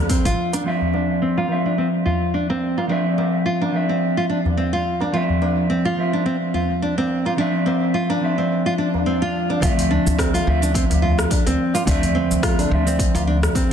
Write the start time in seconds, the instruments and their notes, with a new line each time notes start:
Already playing: clean electric guitar F3 C4 E5
0.09 nylon-string guitar C4, kick, open hi-hat, cabasa
0.25 upright bass A1, nylon-string guitar F4, open hi-hat, cabasa
0.53 nylon-string guitar D4, open hi-hat, tabla na, cabasa
0.64 clean electric guitar F3 C4, nylon-string guitar F4, tabla tin
0.68 clean electric guitar E5
0.81 tabla ge, cabasa
0.94 nylon-string guitar D4, tabla na, tabla tin
1.22 nylon-string guitar C4
1.37 nylon-string guitar F4, tabla na
1.48 clean electric guitar F3 C4, tabla tin
1.52 clean electric guitar E5
1.65 nylon-string guitar D4, tabla na
1.78 nylon-string guitar C4
2.06 nylon-string guitar F4, tabla ge
2.34 nylon-string guitar D4
2.50 nylon-string guitar C4, tabla na, tabla tin
2.78 nylon-string guitar F4, tabla na
2.88 clean electric guitar F3 C4, nylon-string guitar D4, tabla tin
2.92 clean electric guitar E5
3.17 nylon-string guitar C4, tabla na, tabla tin
3.46 nylon-string guitar F4
3.61 nylon-string guitar D4, tabla na
3.72 clean electric guitar F3 C4, tabla tin
3.76 clean electric guitar E5
3.89 nylon-string guitar C4, tabla tin
4.17 nylon-string guitar F4
4.29 nylon-string guitar D4
4.45 tabla na, tabla ge, cabasa
4.57 nylon-string guitar C4, cabasa
4.73 nylon-string guitar F4
5.01 nylon-string guitar D4, tabla na
5.12 clean electric guitar F3 C4, nylon-string guitar F4, tabla tin
5.16 clean electric guitar E5
5.29 tabla ge
5.42 nylon-string guitar D4, tabla na, tabla tin
5.58 cabasa
5.70 nylon-string guitar C4
5.85 nylon-string guitar F4, tabla na
5.96 clean electric guitar F3 C4 E5, tabla tin
6.13 nylon-string guitar D4, tabla na
6.26 nylon-string guitar C4
6.54 nylon-string guitar F4, tabla ge
6.70 cabasa
6.82 nylon-string guitar D4, cabasa
6.98 nylon-string guitar C4, tabla na, tabla tin
7.26 nylon-string guitar F4, tabla na
7.36 clean electric guitar F3 C4, nylon-string guitar D4, tabla tin
7.40 clean electric guitar E5
7.66 nylon-string guitar C4, tabla na, tabla tin
7.82 cabasa
7.94 nylon-string guitar F4, cabasa
8.10 nylon-string guitar D4, tabla na
8.21 clean electric guitar F3 C4 E5, tabla tin
8.38 nylon-string guitar C4, tabla tin
8.50 swell, cabasa
8.66 nylon-string guitar F4
8.78 nylon-string guitar D4
8.94 tabla na, tabla ge, cabasa
9.06 nylon-string guitar C4
9.22 nylon-string guitar F4
9.50 nylon-string guitar D4, tabla na, cabasa
9.60 upright bass D2, clean electric guitar F3 C4, nylon-string guitar F4, kick, open hi-hat, tabla tin, cabasa
9.64 clean electric guitar E5
9.78 open hi-hat, tabla ge, cabasa
9.89 nylon-string guitar D4, tabla tin
10.06 upright bass D2, cabasa
10.19 nylon-string guitar C4, kick, cross-stick, open hi-hat, cabasa
10.34 nylon-string guitar F4, open hi-hat, cabasa
10.45 upright bass D2, clean electric guitar F3 C4 E5, tabla tin
10.62 nylon-string guitar D4, cabasa
10.74 nylon-string guitar C4, kick, open hi-hat, cabasa
10.90 upright bass D2, open hi-hat, tabla na, cabasa
11.02 nylon-string guitar F4, tabla ge
11.19 cross-stick, cabasa
11.31 nylon-string guitar D4, kick, open hi-hat, cabasa
11.46 upright bass D2, nylon-string guitar C4, open hi-hat, tabla tin, cabasa
11.74 nylon-string guitar F4, tabla na, cabasa
11.85 upright bass D2, clean electric guitar F3 C4 E5, nylon-string guitar D4, kick, open hi-hat, tabla tin, cabasa
12.03 open hi-hat, tabla ge, cabasa
12.15 nylon-string guitar C4, tabla na, tabla tin
12.31 upright bass D2, cabasa
12.43 nylon-string guitar F4, kick, cross-stick, open hi-hat, cabasa
12.59 nylon-string guitar D4, open hi-hat, cabasa
12.69 upright bass D2, clean electric guitar F3 C4, tabla tin
12.73 clean electric guitar E5
12.87 nylon-string guitar C4, tabla tin, cabasa
12.99 kick, open hi-hat, cabasa
13.15 upright bass D2, nylon-string guitar F4, open hi-hat, tabla na, cabasa
13.27 nylon-string guitar D4
13.42 cross-stick, tabla na, tabla ge, cabasa
13.55 nylon-string guitar C4, kick, open hi-hat, cabasa